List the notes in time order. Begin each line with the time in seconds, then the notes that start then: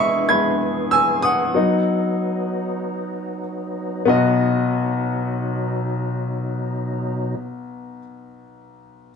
Already playing: E3 G#3 B3 E4 G#4 D#5 B5 C#6
0.00 E5
0.28 G#3 B3 E4 B5 G#6
0.91 G#5 E6
1.22 F#5 D#6
1.54 F#3 B3 D#4
4.05 B1 B2 B3 F#4 D#5